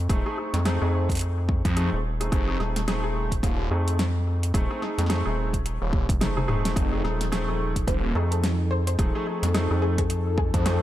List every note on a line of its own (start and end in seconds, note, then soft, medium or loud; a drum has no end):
0.10 0.23 D#1 loud
0.10 0.24 A3 loud
0.10 0.24 C4 medium
0.10 0.24 D#4 medium
0.10 0.24 G#4 loud
0.10 kick loud
0.10 closed hi-hat medium
0.26 0.35 A3 loud
0.26 0.35 C4 medium
0.26 0.35 D#4 medium
0.26 0.35 G#4 loud
0.38 0.56 A3 medium
0.38 0.56 C4 medium
0.38 0.56 D#4 medium
0.38 0.56 G#4 medium
0.54 0.79 F2 loud
0.54 snare medium
0.54 closed hi-hat medium
0.65 0.79 A3 medium
0.65 0.79 C4 medium
0.65 0.79 D#4 medium
0.65 0.79 G#4 loud
0.65 snare loud
0.65 closed hi-hat soft
0.82 1.63 F2 medium
0.82 1.08 A3 medium
0.82 1.08 C4 medium
0.82 1.08 D#4 medium
0.82 1.08 G#4 medium
1.09 kick medium
1.09 closed hi-hat soft
1.11 closed hi-hat soft
1.15 closed hi-hat soft
1.17 closed hi-hat medium
1.19 closed hi-hat medium
1.21 closed hi-hat soft
1.49 kick loud
1.65 1.90 F2 loud
1.65 kick loud
1.65 closed hi-hat medium
1.76 1.95 A3 loud
1.76 1.95 C4 medium
1.76 1.95 D#4 medium
1.76 1.95 G#4 loud
1.76 closed hi-hat medium
1.93 2.30 D#1 loud
2.20 2.30 A3 medium
2.20 2.30 C4 medium
2.20 2.30 D#4 medium
2.20 2.30 G#4 medium
2.20 closed hi-hat medium
2.32 2.58 F1 loud
2.32 2.46 A3 medium
2.32 2.46 C4 medium
2.32 2.46 D#4 medium
2.32 2.46 G#4 medium
2.32 kick loud
2.32 closed hi-hat medium
2.48 2.58 A3 medium
2.48 2.58 C4 medium
2.48 2.58 D#4 medium
2.48 2.58 G#4 medium
2.60 3.41 D#1 medium
2.60 2.78 A3 medium
2.60 2.78 C4 medium
2.60 2.78 D#4 medium
2.60 2.78 G#4 medium
2.60 snare soft
2.76 snare medium
2.76 closed hi-hat medium
2.88 3.02 A3 loud
2.88 3.01 C4 medium
2.88 3.01 D#4 medium
2.88 3.02 G#4 loud
2.88 snare loud
2.88 closed hi-hat medium
3.03 3.30 A3 medium
3.03 3.30 C4 medium
3.03 3.30 D#4 medium
3.03 3.30 G#4 loud
3.32 kick medium
3.32 closed hi-hat medium
3.43 3.69 D#1 loud
3.43 kick loud
3.43 closed hi-hat medium
3.71 4.53 F2 loud
3.71 3.98 A3 medium
3.71 3.98 C4 medium
3.71 3.98 D#4 medium
3.71 3.98 G#4 medium
3.88 closed hi-hat medium
3.99 snare loud
3.99 closed hi-hat medium
4.43 closed hi-hat medium
4.54 4.68 D#1 loud
4.54 4.68 A3 loud
4.54 4.68 C4 medium
4.54 4.68 D#4 medium
4.54 4.68 G#4 loud
4.54 kick loud
4.54 closed hi-hat medium
4.70 4.79 A3 loud
4.70 4.79 C4 medium
4.70 4.79 D#4 medium
4.70 4.79 G#4 loud
4.82 5.01 A3 medium
4.82 5.01 C4 medium
4.82 5.01 D#4 medium
4.82 5.01 G#4 medium
4.82 snare soft
4.98 5.24 F2 loud
4.98 snare medium
4.98 closed hi-hat medium
5.06 5.24 A3 loud
5.06 5.24 C4 medium
5.06 5.24 D#4 medium
5.06 5.24 G#4 loud
5.06 snare soft
5.10 snare loud
5.10 closed hi-hat medium
5.16 snare soft
5.18 snare soft
5.26 5.79 D#1 loud
5.26 5.52 A3 medium
5.26 5.52 C4 medium
5.26 5.52 D#4 medium
5.26 5.52 G#4 medium
5.54 kick medium
5.54 closed hi-hat medium
5.66 closed hi-hat medium
5.82 6.07 D#1 loud
5.93 kick loud
6.09 6.47 F1 loud
6.09 kick loud
6.09 closed hi-hat medium
6.21 6.33 A3 medium
6.21 6.33 C4 medium
6.21 6.33 D#4 medium
6.21 6.33 G#4 medium
6.21 snare loud
6.21 closed hi-hat medium
6.21 high tom medium
6.37 6.47 A3 medium
6.37 6.47 C4 medium
6.37 6.47 D#4 medium
6.37 6.47 G#4 medium
6.37 high tom medium
6.48 6.75 D#1 loud
6.48 6.73 A3 medium
6.48 6.73 C4 medium
6.48 6.73 D#4 medium
6.48 6.73 G#4 loud
6.48 mid tom medium
6.65 snare medium
6.65 closed hi-hat medium
6.76 7.02 F1 loud
6.76 10.82 F3 medium
6.76 6.90 A3 medium
6.76 6.90 C4 medium
6.76 6.90 D#4 medium
6.76 10.82 D#4 medium
6.76 6.90 G#4 medium
6.76 10.82 G#4 medium
6.76 10.82 A4 medium
6.76 kick loud
6.76 closed hi-hat medium
6.92 7.02 A3 medium
6.92 7.02 C4 medium
6.92 7.02 D#4 medium
6.92 7.02 G#4 medium
7.04 7.86 D#1 loud
7.04 7.23 A3 medium
7.04 7.23 C4 medium
7.04 7.23 D#4 medium
7.04 7.23 G#4 medium
7.04 snare soft
7.21 snare medium
7.21 closed hi-hat medium
7.32 7.46 A3 loud
7.32 7.46 C4 medium
7.32 7.46 D#4 medium
7.32 7.46 G#4 loud
7.32 snare loud
7.32 closed hi-hat medium
7.48 7.75 A3 medium
7.48 7.75 C4 medium
7.48 7.75 D#4 medium
7.48 7.75 G#4 medium
7.76 kick medium
7.76 closed hi-hat medium
7.88 8.14 D#1 loud
7.88 8.13 C5 medium
7.88 kick loud
7.88 closed hi-hat medium
8.15 8.97 F2 medium
8.15 8.42 A3 medium
8.15 8.42 C4 medium
8.15 8.42 D#4 medium
8.15 8.42 G#4 medium
8.15 8.26 A4 loud
8.31 8.39 A4 medium
8.31 closed hi-hat medium
8.44 snare loud
8.44 closed hi-hat medium
8.71 8.81 C5 medium
8.87 8.95 C5 medium
8.87 closed hi-hat medium
8.99 9.12 D#1 loud
8.99 9.13 A3 medium
8.99 9.13 C4 medium
8.99 9.13 D#4 medium
8.99 9.13 G#4 loud
8.99 kick loud
8.99 closed hi-hat medium
9.15 9.24 A3 loud
9.15 9.24 C4 medium
9.15 9.24 D#4 medium
9.15 9.24 G#4 loud
9.27 9.45 A3 medium
9.27 9.45 C4 medium
9.27 9.45 D#4 medium
9.27 9.45 G#4 medium
9.43 9.68 F2 loud
9.43 snare medium
9.43 closed hi-hat medium
9.54 9.68 A3 medium
9.54 9.68 C4 medium
9.54 9.68 D#4 medium
9.54 9.68 G#4 loud
9.54 snare loud
9.54 closed hi-hat medium
9.70 10.51 F2 loud
9.70 9.97 A3 medium
9.70 9.97 C4 medium
9.70 9.97 D#4 medium
9.70 9.97 G#4 medium
9.82 9.93 G#4 medium
9.98 10.06 G#4 medium
9.98 kick medium
9.98 closed hi-hat medium
10.10 closed hi-hat medium
10.38 10.57 G#4 medium
10.38 kick loud
10.54 10.79 F2 loud
10.54 kick loud
10.54 closed hi-hat medium
10.65 10.82 A3 loud
10.65 10.82 C4 medium
10.65 10.82 D#4 medium
10.65 10.82 G#4 loud
10.65 10.82 C5 medium
10.65 snare loud
10.65 closed hi-hat medium